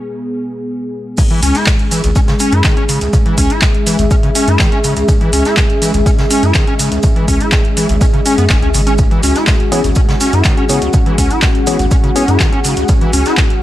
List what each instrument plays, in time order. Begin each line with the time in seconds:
Already playing: analog synth pad B3 G#4
1.17 acid bass C#3, analog synth pad G#3 G#4, ambient pad C#4, kick, closed hi-hat, crash, maracas, shaker
1.30 acid bass E3, closed hi-hat
1.42 sub bass C#2, acid bass C#4, open hi-hat, maracas, shaker
1.55 acid bass E4, snare, closed hi-hat, maracas
1.65 ambient pad G#4, kick, snare, clap, closed hi-hat, maracas, shaker
1.79 closed hi-hat
1.91 acid bass E3, open hi-hat, shaker, maracas
2.04 sub bass G#1, acid bass C#2, closed hi-hat, maracas
2.16 acid bass C#4, kick, closed hi-hat, shaker, maracas
2.28 acid bass C#3, snare, closed hi-hat
2.34 ambient pad E5
2.39 acid bass C#4, open hi-hat, shaker, maracas
2.51 sub bass F#2, acid bass E4, closed hi-hat, maracas
2.64 acid bass D#3, kick, snare, clap, closed hi-hat, maracas, shaker
2.77 acid bass C#4, closed hi-hat
2.89 acid bass C#3, open hi-hat, shaker, maracas
3.01 acid bass C#2, closed hi-hat, maracas
3.13 acid bass C#3, kick, closed hi-hat, shaker, maracas
3.26 acid bass E3, closed hi-hat
3.37 sub bass C#2, acid bass C#4, kick, open hi-hat, shaker, maracas
3.50 acid bass E4, closed hi-hat, maracas
3.62 kick, snare, clap, closed hi-hat, shaker, maracas
3.75 closed hi-hat
3.87 acid bass E3, open hi-hat, shaker, maracas
3.99 sub bass G#1, acid bass C#2, closed hi-hat, maracas
4.11 acid bass C#4, kick, closed hi-hat, maracas, shaker
4.23 acid bass C#3, closed hi-hat
4.35 acid bass C#4, open hi-hat, maracas, shaker
4.48 sub bass F#2, acid bass E4, closed hi-hat, maracas
4.59 acid bass D#3, kick, snare, clap, closed hi-hat, shaker, maracas
4.72 acid bass C#4, closed hi-hat
4.84 acid bass C#3, open hi-hat, maracas, shaker
4.96 acid bass C#2, closed hi-hat, maracas
5.08 acid bass C#3, kick, closed hi-hat, shaker, maracas
5.21 acid bass E3, closed hi-hat
5.33 sub bass C#2, acid bass C#4, open hi-hat, maracas, shaker
5.45 acid bass E4, snare, closed hi-hat, maracas
5.57 kick, snare, clap, closed hi-hat, maracas, shaker
5.70 closed hi-hat
5.82 acid bass E3, open hi-hat, maracas, shaker
5.94 sub bass G#1, acid bass C#2, closed hi-hat, maracas
6.06 acid bass C#4, kick, closed hi-hat, maracas, shaker
6.19 acid bass C#3, snare, closed hi-hat
6.30 acid bass C#4, open hi-hat, maracas, shaker
6.43 sub bass F#2, acid bass E4, closed hi-hat, maracas
6.54 acid bass D#3, kick, snare, clap, closed hi-hat, shaker, maracas
6.67 acid bass C#4, closed hi-hat
6.79 acid bass C#3, open hi-hat, maracas, shaker
6.92 acid bass C#2, closed hi-hat, maracas
7.03 acid bass C#3, kick, closed hi-hat, shaker, maracas
7.16 acid bass E3, closed hi-hat
7.28 sub bass C#2, acid bass C#4, kick, open hi-hat, shaker, maracas
7.40 acid bass E4, closed hi-hat, maracas
7.52 kick, snare, clap, closed hi-hat, shaker, maracas
7.65 closed hi-hat
7.77 acid bass E3, open hi-hat, maracas, shaker
7.89 sub bass G#1, acid bass C#2, closed hi-hat, maracas
8.01 acid bass C#4, kick, closed hi-hat, shaker, maracas
8.13 acid bass C#3, closed hi-hat
8.25 acid bass C#4, open hi-hat, maracas, shaker
8.38 sub bass F#2, acid bass B3, closed hi-hat, maracas
8.49 sub bass G#1, acid bass C#4, kick, snare, clap, closed hi-hat, maracas, shaker
8.62 sub bass C#2, acid bass C#4, closed hi-hat
8.74 sub bass G#1, acid bass C#3, open hi-hat, maracas, shaker
8.86 acid bass C#4, closed hi-hat, maracas
8.98 acid bass C#3, analog synth pad F#4, kick, closed hi-hat, maracas, shaker
9.10 acid bass E3, closed hi-hat
9.23 sub bass C#2, acid bass C#4, open hi-hat, shaker, maracas
9.35 acid bass E4, snare, closed hi-hat, maracas
9.47 ambient pad F#5, kick, snare, clap, closed hi-hat, shaker, maracas
9.60 closed hi-hat
9.72 acid bass E3, tine electric piano B3 E4 G#4 C#5, open hi-hat, maracas, shaker
9.84 sub bass G#1, acid bass C#2, closed hi-hat, maracas
9.95 acid bass C#4, kick, closed hi-hat, shaker, maracas
10.09 acid bass C#3, snare, closed hi-hat
10.20 acid bass C#4, open hi-hat, shaker, maracas
10.32 sub bass F#2, acid bass E4, closed hi-hat, maracas
10.44 acid bass D#3, kick, snare, clap, closed hi-hat, shaker, maracas
10.57 acid bass C#4, closed hi-hat
10.69 acid bass C#3, tine electric piano B3 E4 G#4 C#5, open hi-hat, shaker, maracas
10.82 acid bass C#2, closed hi-hat, maracas
10.93 acid bass C#3, kick, closed hi-hat, shaker, maracas
11.06 acid bass E3, closed hi-hat
11.18 sub bass C#2, acid bass C#4, kick, open hi-hat, maracas, shaker
11.30 acid bass E4, closed hi-hat, maracas
11.42 kick, snare, clap, closed hi-hat, shaker, maracas
11.55 closed hi-hat
11.67 acid bass E3, tine electric piano B3 E4 G#4 C#5, open hi-hat, shaker, maracas
11.79 sub bass G#1, acid bass C#2, closed hi-hat, maracas
11.91 acid bass C#4, kick, closed hi-hat, maracas, shaker
12.04 acid bass C#3, closed hi-hat
12.16 tine electric piano B3 E4 G#4 C#5, acid bass C#4, open hi-hat, maracas, shaker
12.28 sub bass F#2, acid bass E4, closed hi-hat, maracas
12.40 acid bass D#3, kick, snare, clap, closed hi-hat, maracas, shaker
12.52 acid bass C#4, closed hi-hat
12.64 acid bass C#3, open hi-hat, shaker, maracas
12.76 acid bass C#2, closed hi-hat, maracas
12.88 acid bass C#3, kick, closed hi-hat, shaker, maracas
13.01 acid bass E3, closed hi-hat
13.13 sub bass C#2, acid bass C#4, open hi-hat, maracas, shaker
13.25 acid bass E4, snare, closed hi-hat, maracas
13.37 kick, snare, clap, closed hi-hat, maracas, shaker
13.50 closed hi-hat